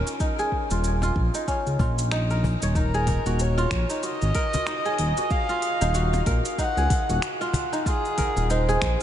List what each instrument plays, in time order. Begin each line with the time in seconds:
Already playing: kora C#4 D#4 F4 A#4
0.06 cajon slap, cabasa
0.20 kora D#4, kick, cabasa
0.39 kora G#4, cabasa
0.52 kick
0.70 analog synth bass D#1, kora F4, cajon slap, cabasa
0.84 cabasa
1.02 kora F4, cajon slap, cabasa
1.16 analog synth bass A#1, kick
1.34 kora D#4, cabasa
1.48 kora C#4, kick, cabasa
1.67 analog synth bass C#2, cabasa
1.79 analog synth bass A#1, kora F4, cajon bass, kick
1.99 cabasa
2.11 kora D#4, finger snap, cabasa
2.30 kora A#4, cabasa
2.44 cajon bass
2.62 analog synth bass D#1, kora C#5, cabasa
2.75 kora D#4, kamancheh A#4, kick, cabasa
2.94 kora G#4, cabasa
3.07 kick, cajon bass, open hi-hat
3.26 analog synth bass D#1, kora F#4, cajon slap, cabasa
3.39 kamancheh C#5, cabasa
3.58 kora F4, cajon slap, cabasa
3.71 analog synth bass A#1, finger snap, kick, open hi-hat
3.90 kora D#4, cabasa
4.03 kora F#4, kamancheh D#5, cabasa
4.22 analog synth bass G#1, cabasa
4.35 kora A#4, kick, open hi-hat
4.54 cajon bass, cajon slap, cabasa
4.67 kora D#4, finger snap, cabasa
4.85 kora G#4, cabasa
4.98 analog synth bass D#1, open hi-hat
5.17 kora F#4, cajon slap, cabasa
5.30 kamancheh F5, kick, cabasa
5.49 kora F4, cabasa
5.62 open hi-hat
5.81 analog synth bass D#1, kora D#4, cajon slap, cabasa
5.94 kora F#4, cabasa
6.13 cajon slap, cabasa
6.26 analog synth bass A#1, kora A#4, kick, open hi-hat
6.45 cabasa
6.58 kora D#4, kamancheh F#5, kick, cabasa
6.77 analog synth bass C#2, kora G#4, cabasa
6.90 kick, cajon bass, open hi-hat
7.09 analog synth bass D#1, kora F#4, cabasa
7.22 finger snap, cabasa
7.41 kora F4, cabasa
7.53 cajon bass, open hi-hat
7.73 kora D#4, cabasa
7.86 kora F4, kamancheh G#4, kick, cabasa
8.05 cabasa
8.18 kora A#4, kick, cajon bass, open hi-hat
8.36 analog synth bass D#1, cajon slap, cabasa
8.50 kora D#4, kamancheh C5, cabasa
8.69 kora G#4, cajon slap, cabasa
8.82 analog synth bass A#1, finger snap, kick, open hi-hat